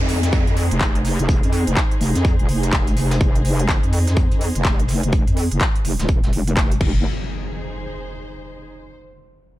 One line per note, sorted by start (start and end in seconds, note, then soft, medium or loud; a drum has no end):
0.00 0.45 F2 loud
0.00 6.80 D#4 medium
0.00 6.81 G#4 medium
0.00 downlifter medium
0.09 closed hi-hat medium
0.09 open hi-hat loud
0.23 snare soft
0.23 closed hi-hat medium
0.33 6.81 C5 medium
0.33 kick loud
0.33 closed hi-hat medium
0.47 0.69 F2 medium
0.47 closed hi-hat soft
0.57 closed hi-hat medium
0.57 open hi-hat loud
0.71 0.79 F1 loud
0.71 closed hi-hat medium
0.81 1.17 F1 medium
0.81 kick loud
0.81 snare loud
0.81 clap loud
0.81 closed hi-hat medium
0.95 closed hi-hat medium
1.05 snare soft
1.05 closed hi-hat medium
1.05 open hi-hat loud
1.19 1.41 F1 medium
1.19 closed hi-hat medium
1.29 kick loud
1.29 closed hi-hat loud
1.43 1.65 F2 loud
1.43 closed hi-hat soft
1.43 closed hi-hat medium
1.52 closed hi-hat medium
1.52 open hi-hat loud
1.67 1.75 F1 loud
1.67 closed hi-hat medium
1.77 kick loud
1.77 snare loud
1.77 clap loud
1.77 closed hi-hat medium
1.91 closed hi-hat soft
2.01 2.13 F1 loud
2.01 closed hi-hat medium
2.01 open hi-hat loud
2.15 2.37 F2 loud
2.15 snare soft
2.15 closed hi-hat medium
2.25 kick loud
2.25 closed hi-hat medium
2.39 2.47 D#1 medium
2.39 closed hi-hat soft
2.49 2.95 F1 loud
2.49 closed hi-hat medium
2.49 open hi-hat loud
2.63 closed hi-hat soft
2.63 closed hi-hat medium
2.72 kick loud
2.72 snare loud
2.72 clap loud
2.72 closed hi-hat medium
2.87 closed hi-hat soft
2.87 closed hi-hat medium
2.97 3.19 F1 medium
2.97 snare soft
2.97 closed hi-hat medium
2.97 open hi-hat loud
3.11 snare loud
3.11 closed hi-hat medium
3.21 3.67 F1 loud
3.21 kick loud
3.21 closed hi-hat medium
3.35 closed hi-hat soft
3.45 closed hi-hat medium
3.45 open hi-hat loud
3.59 closed hi-hat medium
3.69 3.81 G1 loud
3.69 kick loud
3.69 snare loud
3.69 clap loud
3.69 closed hi-hat medium
3.83 4.29 F2 loud
3.83 closed hi-hat soft
3.92 closed hi-hat medium
3.92 open hi-hat loud
4.07 snare medium
4.07 closed hi-hat medium
4.16 kick loud
4.16 closed hi-hat medium
4.31 4.53 F2 loud
4.31 closed hi-hat soft
4.41 closed hi-hat medium
4.41 open hi-hat loud
4.55 4.63 F1 loud
4.55 closed hi-hat medium
4.64 5.01 F1 loud
4.64 kick loud
4.64 snare loud
4.64 clap loud
4.64 closed hi-hat medium
4.79 closed hi-hat soft
4.88 snare soft
4.88 closed hi-hat medium
4.88 open hi-hat loud
5.03 5.25 F1 loud
5.03 closed hi-hat medium
5.12 kick loud
5.12 closed hi-hat medium
5.27 5.49 F2 loud
5.27 closed hi-hat soft
5.37 closed hi-hat medium
5.37 open hi-hat loud
5.51 5.59 F1 medium
5.51 closed hi-hat medium
5.60 kick loud
5.60 snare loud
5.60 clap loud
5.60 closed hi-hat medium
5.76 closed hi-hat soft
5.85 5.97 F1 loud
5.85 closed hi-hat medium
5.85 open hi-hat loud
5.99 6.31 D#1 loud
5.99 snare medium
5.99 closed hi-hat medium
6.08 kick loud
6.08 closed hi-hat medium
6.23 snare soft
6.23 closed hi-hat soft
6.33 6.55 F1 loud
6.33 closed hi-hat medium
6.33 open hi-hat loud
6.47 closed hi-hat soft
6.47 closed hi-hat medium
6.57 6.80 F1 loud
6.57 kick loud
6.57 snare loud
6.57 clap loud
6.57 closed hi-hat medium
6.71 closed hi-hat medium
6.71 closed hi-hat soft
6.81 7.03 F1 medium
6.81 8.69 D#4 medium
6.81 kick loud
6.81 crash medium
6.81 impact medium
6.89 8.69 G#4 medium
7.21 8.93 C5 medium